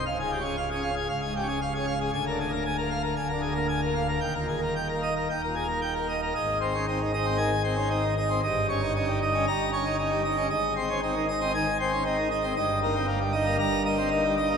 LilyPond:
<<
  \new Staff \with { instrumentName = "Pipe organ" } { \time 4/4 \key aes \major \tempo 4 = 116 f''16 aes'16 g'16 aes'16 f''16 aes'16 f''16 aes'16 f''16 aes'16 g'16 aes'16 f''16 aes'16 f''16 aes'16 | aes''16 bes'16 aes'16 bes'16 aes''16 bes'16 f''16 bes'16 aes''16 bes'16 aes'16 bes'16 aes''16 bes'16 f''16 bes'16 | g''16 bes'16 aes'16 bes'16 g''16 bes'16 ees''16 bes'16 g''16 bes'16 aes'16 bes'16 g''16 bes'16 ees''16 bes'16 | ees''8 c''8 ees'8 ees''8 aes''8 c''8 ees'8 ees''8 |
ees''8 des''8 ees'8 ees''8 bes''8 des''8 ees'8 ees''8 | ees''8 c''8 ees'8 ees''8 aes''8 c''8 ees'8 ees''8 | ees''8 ees'8 g8 ees''8 bes''8 ees''8 ees'8 ees''8 | }
  \new Staff \with { instrumentName = "Pipe organ" } { \time 4/4 \key aes \major << { \tuplet 3/2 { des,8 aes,8 des'8 r8 des'8 r8 des,8 aes,8 des'8 r8 des'8 r8 } | \tuplet 3/2 { d,8 d8 bes8 r8 bes8 r8 d,8 d8 bes8 r8 bes8 r8 } | \tuplet 3/2 { ees,8 bes,8 bes8 r8 bes8 r8 ees,8 bes,8 bes8 r8 bes8 r8 } | aes,8 c'16 des'16 c'16 ees16 ees'16 c'16 ees16 r16 c'16 des'16 c'16 ees16 ees'16 c'16 |
g,8 des'16 ees'16 des'16 g16 ees'16 des'16 g,8 des'16 ees'16 des'16 g16 ees'16 des'16 | aes,8 c'16 des'16 c'16 ees16 ees'16 c'16 ees16 r16 c'16 des'16 c'16 ees16 ees'16 c'16 | g,8 bes16 c'16 bes16 g16 ees'16 bes16 g,8 bes16 c'16 bes16 g16 ees'16 bes16 | } \\ { des,,2 des,,2 | d,,2 d,,2 | ees,,2 ees,,2 | aes,,1 |
g,,2 g,,2 | aes,,1 | g,,2 g,,2 | } >> }
>>